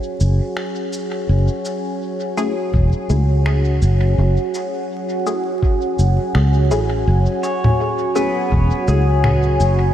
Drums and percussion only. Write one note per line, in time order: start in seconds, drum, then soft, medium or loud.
0.20 shaker medium
0.57 finger snap medium
0.93 shaker soft
1.65 shaker soft
2.37 shaker medium
2.74 kick loud
3.10 shaker soft
3.46 finger snap medium
3.82 shaker soft
4.54 shaker soft
5.27 shaker soft
5.63 kick loud
5.99 shaker soft
6.35 finger snap medium
6.71 shaker soft
7.43 shaker soft
7.64 low conga medium
8.16 shaker soft
8.52 kick loud
8.88 shaker soft
9.24 finger snap medium
9.24 low conga medium
9.60 shaker soft